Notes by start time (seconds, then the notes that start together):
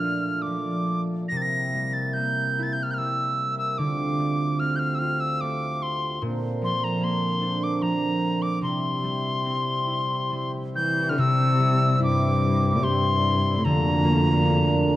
Already playing: A#2 F3 A3 D4 F6
0.04 F4
0.42 F3 D6
1.28 C3 A#3 E4 A#6
1.37 A6
1.42 A#6
1.73 G3
1.93 A6
2.13 A#3 G6
2.59 E4
2.63 A6
2.73 G6
2.83 F6
2.91 F6 G6
2.98 G3 E6
3.58 E6
3.78 D2 D3 F4 D6
4.18 A3
4.60 C4 F6
4.76 F6 G6
4.95 E6
4.99 F4 F6
5.20 E6
5.41 A3 D6
5.82 C6
6.22 A#2 D3 A#3 C4
6.62 F3 C6
6.84 A#5
7.01 A#3 C6
7.42 D4
7.63 D6
7.82 F3 A#5
8.42 D6
8.61 C3 G3 E4 C6
9.03 G3
9.45 C4
9.87 E4
10.31 G3
10.76 E3 G6
11.09 D3 F6
11.18 C3 G3 E4 E6
11.60 G3
12.00 G2 E4 D6
12.76 A#2 D6
12.83 G2 G4 C6
13.56 A2 C6
13.63 D2 F2 A#2 D3 A#5
14.04 A#3
14.44 D4